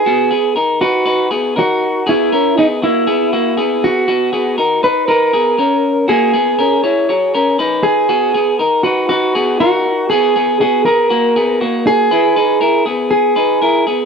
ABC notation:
X:1
M:4/4
L:1/8
Q:1/4=119
K:B
V:1 name="Clean electric guitar"
G2 z F2 z F2 | E2 D E4 F- | F3 B A4 | G6- G G- |
G2 z F F2 F2 | G2 G A4 G- | G3 z G4 |]
V:2 name="Clean electric guitar"
[B,F] [B,G] [DA] [DB] [DB] [B,G] [DA]2 | [B,G] [CA] [B,G] [A,F] [B,G] [A,F] [B,G]2 | [B,F] [B,G] [DA] [DB] [DB] [B,G] [CA]2 | [A,F] [B,G] [CA] [Ec] [Fc] [CA] [DB]2 |
[B,F] [B,G] [DA] [DB] [DB] [B,G] [DA]2 | [B,G] [B,G] [B,F] [B,G] [A,F] [B,G] [A,F]2 | [EB] [DB] [EA] [B,G]2 [DB] [EA] [B,G] |]